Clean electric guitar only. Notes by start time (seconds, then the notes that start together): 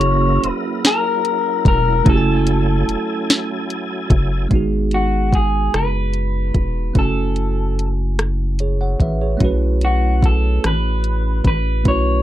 Already playing: C#5
0.49 B4
0.87 A#4
1.68 A#4
2.09 A4
4.94 F#4
5.35 G#4
5.76 B4
6.99 A4
9.85 F#4
10.26 A4
10.66 B4
11.47 B4
11.88 C#5